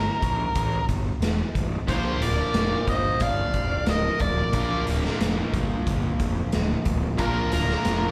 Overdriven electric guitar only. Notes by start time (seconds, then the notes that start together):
1.87 A#2 F3 A#3 D4 F4 A#4
4.52 A#2 F3 A#3 D4 F4 A#4
7.17 A#2 F3 A#3 D4 F4 A#4